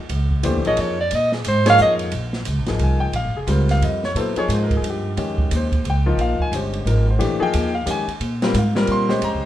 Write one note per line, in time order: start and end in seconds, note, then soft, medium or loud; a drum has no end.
0.09 0.42 C#2 medium
0.09 ride medium
0.30 kick medium
0.43 0.57 D#2 loud
0.43 0.62 E3 medium
0.43 0.63 A3 medium
0.43 0.63 D4 medium
0.43 0.63 G4 medium
0.43 0.63 C5 medium
0.43 hi-hat pedal medium
0.43 ride medium
0.56 0.66 C#2 medium
0.65 0.77 A#1 medium
0.65 0.95 F3 medium
0.65 0.95 A#3 medium
0.65 0.95 D#4 medium
0.65 0.95 G#4 medium
0.65 0.96 C#5 medium
0.65 0.82 D#5 loud
0.65 ride medium
0.77 1.10 F2 medium
0.77 ride medium
0.81 1.00 C#5 medium
1.01 1.16 D5 loud
1.11 1.44 A#2 medium
1.11 ride medium
1.15 1.33 D#5 loud
1.32 1.50 G#4 medium
1.32 snare soft
1.44 1.78 G#2 loud
1.44 1.68 C5 loud
1.44 hi-hat pedal medium
1.44 ride medium
1.66 2.10 F3 medium
1.66 2.10 A#3 medium
1.66 2.10 D#4 medium
1.66 2.10 G#4 medium
1.66 2.10 C#5 medium
1.66 snare medium
1.66 ride medium
1.70 1.80 F5 loud
1.78 2.12 F2 medium
1.78 hi-hat pedal medium
1.82 1.94 D#5 medium
1.99 ride medium
2.11 2.45 A#1 medium
2.11 ride medium
2.33 snare soft
2.45 2.58 C#2 medium
2.45 hi-hat pedal medium
2.45 ride medium
2.58 2.68 A#1 medium
2.66 2.78 G#1 medium
2.66 3.11 F3 medium
2.66 3.12 A#3 medium
2.66 3.12 D#4 medium
2.66 3.12 G#4 medium
2.66 snare soft
2.66 ride soft
2.79 3.11 C2 medium
2.79 ride medium
2.83 3.02 G#5 medium
3.00 3.13 G5 medium
3.12 3.26 A#1 medium
3.12 3.36 F5 medium
3.12 ride medium
3.24 3.34 G#1 medium
3.35 3.46 F1 medium
3.35 3.48 G#4 medium
3.47 3.80 C#2 loud
3.47 3.99 G3 medium
3.47 3.99 C4 medium
3.47 3.99 F4 medium
3.47 3.99 A#4 medium
3.47 3.70 C5 medium
3.47 hi-hat pedal medium
3.47 ride medium
3.69 3.82 F5 medium
3.69 snare soft
3.69 ride medium
3.81 4.14 F2 medium
3.81 4.04 D#5 medium
3.81 ride medium
4.03 4.16 C#5 medium
4.03 snare soft
4.15 4.35 A#2 medium
4.15 4.35 F#3 medium
4.15 4.35 B3 medium
4.15 4.35 E4 medium
4.15 4.35 A4 medium
4.15 ride medium
4.20 4.39 C5 medium
4.36 5.10 F3 medium
4.36 5.09 A#3 medium
4.36 5.10 D#4 medium
4.36 4.75 G#4 medium
4.36 4.50 C#5 medium
4.36 muted upright bass stroke soft
4.36 ride medium
4.48 4.81 G#2 loud
4.48 hi-hat pedal medium
4.48 ride medium
4.53 4.63 C5 medium
4.63 4.73 A#4 medium
4.71 kick medium
4.71 ride soft
4.77 4.86 G#4 medium
4.82 5.16 G2 medium
4.82 ride medium
4.90 5.16 G4 medium
5.17 5.50 F2 medium
5.17 5.68 D#3 medium
5.17 5.68 G#3 medium
5.17 5.68 C#4 medium
5.17 5.68 G4 medium
5.17 ride medium
5.38 kick medium
5.51 5.84 D#2 medium
5.51 hi-hat pedal medium
5.51 ride medium
5.56 5.85 C5 medium
5.72 kick medium
5.72 ride soft
5.84 6.16 C#2 medium
5.84 ride medium
5.90 6.19 G5 medium
6.06 6.50 F3 medium
6.06 6.50 A#3 medium
6.06 6.50 D#4 medium
6.06 6.50 F4 medium
6.17 6.38 A#1 medium
6.17 6.40 F5 medium
6.17 ride medium
6.40 6.53 G#5 medium
6.40 muted upright bass stroke soft
6.40 kick medium
6.52 6.85 G1 medium
6.52 6.86 G#3 medium
6.52 6.86 C#4 medium
6.52 6.86 G4 medium
6.52 6.86 C5 medium
6.52 hi-hat pedal medium
6.52 ride medium
6.73 ride soft
6.85 7.19 G#1 medium
6.85 7.05 F3 medium
6.85 7.05 A#3 medium
6.85 7.06 D#4 medium
6.85 7.06 A#4 medium
6.85 ride medium
7.10 7.41 C5 medium
7.19 7.40 A#1 medium
7.19 7.39 E3 medium
7.19 7.38 A3 medium
7.19 7.39 D4 medium
7.19 7.39 G4 medium
7.19 ride medium
7.40 7.70 F3 medium
7.40 7.70 A#3 medium
7.40 7.70 D#4 medium
7.40 7.70 G#4 medium
7.40 7.73 G5 loud
7.40 muted upright bass stroke soft
7.53 7.86 D#2 loud
7.53 hi-hat pedal medium
7.53 ride medium
7.75 7.87 F5 medium
7.86 8.07 F2 medium
7.86 8.06 D#3 medium
7.86 8.06 G#3 medium
7.86 8.06 C#4 medium
7.86 8.06 G4 medium
7.86 hi-hat pedal medium
7.86 ride medium
7.90 8.10 G#5 medium
8.07 muted upright bass stroke soft
8.07 ride medium
8.20 8.54 A#2 medium
8.20 ride medium
8.42 8.54 G3 medium
8.42 8.54 C4 medium
8.42 8.54 F4 medium
8.42 8.54 A#4 medium
8.42 snare medium
8.42 ride medium
8.54 8.87 G#2 loud
8.54 hi-hat pedal medium
8.54 ride medium
8.59 8.88 F5 medium
8.75 9.08 G3 medium
8.75 9.08 C4 medium
8.75 9.08 F4 medium
8.75 9.08 A#4 loud
8.75 snare medium
8.87 9.21 A#2 medium
8.87 ride medium
8.92 9.22 C6 medium
9.09 9.45 G#3 medium
9.09 9.45 C#4 medium
9.09 9.45 G4 medium
9.09 9.45 C5 medium
9.09 snare soft
9.22 9.35 F2 medium
9.22 9.44 A#5 medium
9.22 ride medium
9.34 9.44 C#2 medium